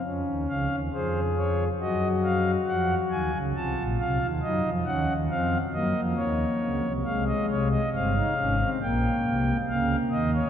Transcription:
<<
  \new Staff \with { instrumentName = "Pipe organ" } { \time 4/4 \key des \major \tempo 4 = 68 << { r8 f''8 c''8 des''8 ees''8 f''8 ges''8 aes''8 | a''8 f''8 ees''8 ges''8 f''8 ees''8 des''4 | f''16 ees''16 des''16 ees''16 f''4 g''4 f''8 ees''16 des''16 | } \\ { des'4 aes'4 ges'2 | f'4 ees'8 des'8 c'8 bes4. | aes4 c'16 ees'16 des'16 c'16 bes4 bes4 | } >> }
  \new Staff \with { instrumentName = "Pipe organ" } { \clef bass \time 4/4 \key des \major <f, f>16 <ees, ees>16 <des, des>16 <ees, ees>16 <f, f>4 <ges, ges>4 <f, f>8 <ees, ees>16 <des, des>16 | <c, c>16 <bes,, bes,>16 <c, c>16 <ees, ees>16 <ges, ges>16 <f, f>16 <ees, ees>16 <ees, ees>16 <f, f>8 <ges, ges>16 <f, f>16 <ees, ees>8 <des, des>16 <c, c>16 | <c, c>8 <c, c>8 <g,, g,>8 <aes,, aes,>8 <bes,, bes,>8 <c, c>8 <des, des>8 <ees, ees>8 | }
>>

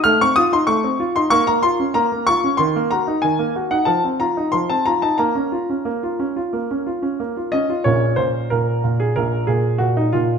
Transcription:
<<
  \new Staff \with { instrumentName = "Grand piano" } { \time 4/4 \key bes \minor \tempo 4 = 92 << { f'''16 des'''16 ees'''16 c'''16 des'''8. c'''16 des'''16 bes''16 c'''8 bes''8 des'''8 | c'''8 bes''8 aes''8. ges''16 a''8 bes''8 c'''16 a''16 bes''16 a''16 | bes''2. r8 ees''8 | des''8 c''8 bes'8. aes'16 bes'8 aes'8 ges'16 ees'16 f'8 | } \\ { a16 c'16 f'16 ees'16 a16 c'16 f'16 ees'16 bes16 bes16 f'16 des'16 bes16 bes16 f'16 des'16 | ees16 bes16 ges'16 ees'16 ees16 bes16 ges'16 ees'16 f16 c'16 f'16 ees'16 f16 c'16 f'16 ees'16 | bes16 des'16 f'16 des'16 bes16 f'16 des'16 f'16 bes16 des'16 f'16 des'16 bes16 f'16 des'16 f'16 | <bes,, bes,>8 bes,8 bes,8 bes,8 <bes,, bes,>8 bes,8 bes,8 bes,8 | } >> }
  \new Staff \with { instrumentName = "Grand piano" } { \time 4/4 \key bes \minor r1 | r1 | r1 | <bes des'>1 | }
>>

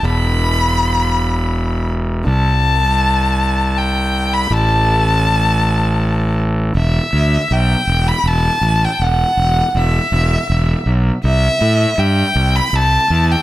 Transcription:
<<
  \new Staff \with { instrumentName = "Violin" } { \time 3/4 \key e \minor \tempo 4 = 80 b''2~ b''8 r8 | a''2 g''8. b''16 | a''2~ a''8 r8 | e''4 g''8. b''16 a''8. g''16 |
fis''4 e''4. r8 | e''4 g''8. b''16 a''8. g''16 | }
  \new Staff \with { instrumentName = "Fingered electric bass" } { \clef bass \time 3/4 \key e \minor e,,2. | c,2. | a,,2. | e,,8 d,8 b,,8 e,,8 e,,8 a,,8 |
e,,8 e,,8 e,,8 e,,8 e,,8 b,,8 | c,8 a,8 g,8 c,8 c,8 e,8 | }
>>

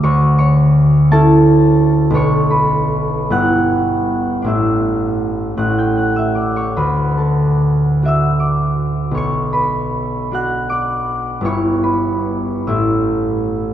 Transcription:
\new Staff \with { instrumentName = "Harp" } { \time 6/8 \key a \mixolydian \tempo 4. = 53 << { <a' cis'' e'' a'' cis'''>8 <cis'' cis'''>4 <a' a''>4. | <cis'' cis'''>8 <b' b''>4 <fis'' fis'''>4. | <e'' e'''>4. <fis'' fis'''>16 <g'' g'''>16 <fis'' fis'''>16 <e'' e'''>16 <d'' d'''>16 <cis'' cis'''>16 | <b' b''>8 <a' a''>4 <e'' e'''>8 <d'' d'''>4 |
<cis'' cis'''>8 <b' b''>4 <fis'' fis'''>8 <d'' d'''>4 | <cis'' cis'''>8 <b' b''>4 <e'' e'''>4. | } \\ { <d, a>4. <cis' e'>4. | <b,, b d'>4. <g,, b e'>4. | <a,, d' e'>4. <a,, cis' e'>4. | d,4. <d' fis'>4. |
b,,4. <d' fis'>4. | <g,, b e'>4. <a,, a e'>4. | } >> }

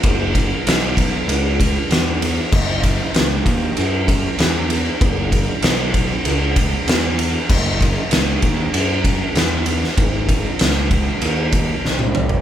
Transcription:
<<
  \new Staff \with { instrumentName = "Picked electric bass" } { \clef bass \time 4/4 \key fis \dorian \tempo 4 = 97 fis,,4 b,,4 cis,4 e,4 | fis,,4 cis,8 dis,8 fis,4 e,4 | fis,,4 b,,4 cis,4 e,4 | fis,,4 cis,8 dis,8 fis,4 e,4 |
gis,,4 cis,4 dis,4 bis,,4 | }
  \new DrumStaff \with { instrumentName = "Drums" } \drummode { \time 4/4 <bd cymr>8 <bd cymr>8 <cymr sn>8 <bd cymr>8 cymr8 <bd cymr>8 <cymr sn>8 cymr8 | <cymc bd>8 <bd cymr>8 <cymr sn>8 <bd cymr>8 cymr8 <bd cymr>8 <cymr sn>8 cymr8 | <bd cymr>8 <bd cymr>8 <cymr sn>8 <bd cymr>8 cymr8 <bd cymr>8 <cymr sn>8 cymr8 | <cymc bd>8 <bd cymr>8 <cymr sn>8 <bd cymr>8 cymr8 <bd cymr>8 <cymr sn>8 cymr16 sn16 |
<bd cymr>8 <bd cymr>8 <cymr sn>8 <bd cymr>8 cymr8 <bd cymr>8 sn16 tommh16 toml16 tomfh16 | }
>>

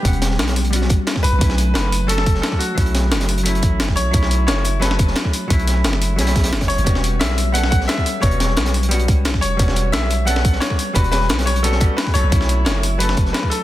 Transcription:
<<
  \new Staff \with { instrumentName = "Grand piano" } { \time 4/4 \key e \dorian \tempo 4 = 176 g'2~ g'8 r4 b'8~ | b'4 b'4 a'4 a'8 fis'8~ | fis'2~ fis'8 r4 cis''8~ | cis''4 cis''4 b'2~ |
b'2. r8 cis''8~ | cis''4 e''4 fis''8 fis''8 e''4 | cis''4. r2 cis''8~ | cis''4 e''4 fis''4 cis''4 |
b'8 b'4 cis''8 a'4 b'8 cis''8~ | cis''4 cis''4 b'4 b'8 a'8 | }
  \new Staff \with { instrumentName = "Hollow-body jazz guitar" } { \time 4/4 \key e \dorian <g b cis' fis''>2 <g b cis' fis'>4. r8 | <fis a cis' e'>2 <fis a cis' a'>2 | <fis a cis' e'>2 <fis a cis' e'>2 | <fis a cis' e'>2 <fis a cis' a'>2 |
<fis a cis' e'>2 <fis a cis' e'>2 | <g b cis' fis'>2 <g b cis' a'>2 | <g b cis' fis'>2 <g b cis' fis'>2 | <g b cis' fis'>2 <g b cis' a'>2 |
<g b cis' fis'>2 <g b cis' fis'>8 <g b cis' fis'>4 <fis a cis' a'>8 | <fis a cis' e'>2 <fis a cis' a'>2 | }
  \new Staff \with { instrumentName = "808-style bass" } { \clef bass \time 4/4 \key e \dorian e,,4 b,,4. a,,16 r8. b,,16 b,,16 | b,,4 fis,,2 r4 | b,,4 fis,,4. a,,8 fis,,8 b,,8 | b,,4 fis,,2 r4 |
b,,4 fis,,4 b,,4 fis,,8. fis,,16 | e,,4 b,,2 r4 | e,,4 b,,4. cis,8 b,,8 e,,8 | e,,4 b,,2 r4 |
e,,4 b,,4. a,,16 r8. b,,16 b,,16 | b,,4 fis,,2 r4 | }
  \new DrumStaff \with { instrumentName = "Drums" } \drummode { \time 4/4 <hh bd>16 hh16 <hh sn>16 sn16 <hh sn>16 <hh sn>16 <hho sn>16 hh16 hh16 sn16 <hh bd>8 <hh sn>16 <bd sn>16 <hh hho>8 | <hh bd>16 sn16 hh8 <hh sn>16 sn16 <hh hho>8 hh16 sn16 <hh bd>16 sn16 <hh sn>16 <bd sn>16 <hh hho>8 | <hh bd>16 hh16 <hh sn>8 <hh sn>16 <hh sn>16 hho16 hh16 hh16 hh16 <hh bd>8 <hh sn>16 <bd sn>16 <hh hho>8 | <hh bd>16 sn16 hh8 <hh sn>16 sn16 <hh hho>8 <hh sn>16 sn16 <hh bd>16 sn16 <hh sn>16 <bd sn>16 <hh hho>8 |
<hh bd>16 hh16 <hh sn>8 <hh sn>16 sn16 <hh hho>8 <hh sn>16 <hh sn>16 <hh bd sn>16 <hh sn>16 <hh sn>16 <hh bd sn>16 <hho sn>16 hh16 | <hh bd>16 sn16 hh8 <hh sn>16 sn16 <hh hho>8 hh16 sn16 <hh bd>16 sn16 <hh sn>16 <bd sn>16 <hh hho>8 | <hh bd>16 hh16 <hh sn>8 <hh sn>16 <hh sn>16 hho16 hh16 hh16 hh16 <hh bd>8 <hh sn>16 <bd sn>16 <hh hho>8 | <hh bd>16 sn16 hh8 <hh sn>16 sn16 <hh hho>8 hh16 sn16 <hh bd>16 sn16 <hh sn>16 <bd sn>16 <hh hho>8 |
<hh bd>16 hh16 <hh sn>16 sn16 <hh sn>16 <hh sn>16 <hho sn>16 hh16 hh16 sn16 <hh bd>8 <hh sn>16 <bd sn>16 <hh hho>8 | <hh bd>16 sn16 hh8 <hh sn>16 sn16 <hh hho>8 hh16 sn16 <hh bd>16 sn16 <hh sn>16 <bd sn>16 <hh hho>8 | }
>>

